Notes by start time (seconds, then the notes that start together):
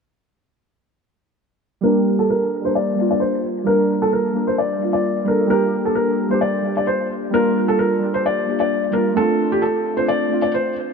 1.81 G3 A#3 D4 A#4
1.87 G4
2.19 A4
2.30 A#4
2.61 G3 A#3 D4 C5
2.67 A#4
2.75 D5
2.95 G3 A#3 D4
3.01 F4
3.11 D5
3.20 C5
3.64 G3 A#3 D4 A#4
3.70 A#4
4.02 A4
4.13 A#4
4.33 G3 A#3 D4
4.39 A#4
4.47 C5
4.58 D5
4.78 G3 A#3 D4
4.84 F4
4.93 D5
5.24 G3 A#3 D4 A#4
5.30 A4
5.47 G3 A#3 D4 A#4
5.53 G4
5.85 A4
5.95 A#4
6.28 G3 A#3 D4 C5
6.34 G4
6.41 D5
6.62 G3 A#3 D4
6.68 G4
6.77 D5
6.87 C5
7.30 G3 A#3 D4 A#4
7.36 F4
7.68 A4
7.79 A#4
7.99 G3 A#3 D4
8.05 G4
8.14 C5
8.26 D5
8.45 G3 A#3 D4
8.51 G4
8.60 D5
8.91 G3 A#3 D4 A#4
8.97 F4
9.13 A3 C4 D4 A4
9.19 F4
9.52 G4
9.62 A4
9.94 A3 C4 D4 C5
10.00 F4
10.08 D5
10.28 A3 C4 D4
10.34 F4
10.42 D5
10.54 C5